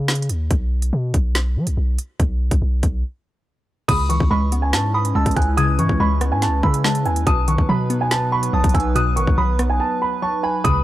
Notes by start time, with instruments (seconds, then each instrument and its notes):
Already playing: 808-style bass C#3
0.08 snare, closed hi-hat
0.15 closed hi-hat
0.22 closed hi-hat
0.29 808-style bass D#2, closed hi-hat
0.51 808-style bass B1, kick, closed hi-hat
0.82 closed hi-hat
0.93 808-style bass B2
1.14 808-style bass B1, kick, closed hi-hat
1.35 snare, closed hi-hat
1.56 808-style bass F#3
1.67 808-style bass B1, closed hi-hat
1.77 808-style bass B1
1.98 closed hi-hat
2.20 808-style bass B1, kick, closed hi-hat
2.51 808-style bass B1, kick, closed hi-hat
2.62 808-style bass B1
2.83 808-style bass B1, kick, closed hi-hat
3.88 808-style bass C#2, synth pluck C#3, analog synth pad G#3 C#4 E4 B4, synth bell B5, grand piano D#6, kick, closed hi-hat, crash
4.09 synth pluck E3, grand piano C#6, closed hi-hat
4.20 808-style bass C#2, kick
4.31 808-style bass C#2, synth pluck G#3, grand piano B5, synth bell C#6
4.52 synth pluck B3, closed hi-hat
4.62 grand piano G#5
4.73 808-style bass G#2, grand piano A5, snare, closed hi-hat
4.94 grand piano B5, synth bell D#6
5.05 closed hi-hat
5.15 808-style bass C#2, synth pluck G#3, grand piano A5, synth bell E6
5.26 808-style bass C#2, kick, closed hi-hat
5.31 closed hi-hat
5.36 808-style bass C#2, grand piano G#5, synth bell F#6, kick, closed hi-hat
5.42 closed hi-hat
5.57 synth pluck C#3, grand piano D#6, synth bell G#6, closed hi-hat
5.79 808-style bass G#2, synth pluck E3, grand piano C#6, closed hi-hat
5.89 808-style bass C#2, kick
6.00 808-style bass C#2, synth pluck G#3, grand piano B5, synth bell C#6
6.21 synth pluck B3, cross-stick, closed hi-hat
6.32 808-style bass G#2, grand piano G#5
6.42 grand piano A5, snare, closed hi-hat
6.47 808-style bass C#2
6.63 808-style bass C#3, grand piano B5, synth bell E6, kick
6.74 closed hi-hat
6.84 synth pluck G#3, grand piano A5, snare
6.95 closed hi-hat
7.06 808-style bass D#2, grand piano G#5, closed hi-hat
7.16 closed hi-hat
7.26 808-style bass B1, synth pluck B2, analog synth pad F#3 B3 D#4, synth bell A5, grand piano D#6, kick, closed hi-hat
7.48 synth pluck D#3, grand piano C#6, closed hi-hat
7.58 808-style bass B1, kick
7.69 808-style bass B2, synth pluck F#3, grand piano B5, synth bell B5
7.90 synth pluck B3, closed hi-hat
8.01 grand piano G#5
8.11 grand piano A5, snare, closed hi-hat
8.32 grand piano B5, synth bell C#6
8.43 closed hi-hat
8.53 808-style bass B1, synth pluck F#3, grand piano A5, synth bell D#6
8.64 808-style bass B1, kick, closed hi-hat
8.69 closed hi-hat
8.74 808-style bass B1, grand piano G#5, synth bell E6, kick, closed hi-hat
8.80 closed hi-hat
8.95 synth pluck B2, grand piano D#6, synth bell F#6, closed hi-hat
9.16 808-style bass A1, synth pluck D#3, grand piano C#6, closed hi-hat
9.27 808-style bass B1, kick
9.38 808-style bass B1, synth pluck F#3, grand piano B5, synth bell D#6
9.59 synth pluck B3, cross-stick, closed hi-hat
9.70 grand piano G#5
9.80 grand piano A5
10.02 grand piano B5
10.22 synth pluck F#3, grand piano A5, synth bell C#6
10.43 grand piano G#5, synth bell B5
10.64 808-style bass C#2, synth pluck C#3, analog synth pad G#3 C#4 E4, synth bell B5, grand piano D#6, kick, closed hi-hat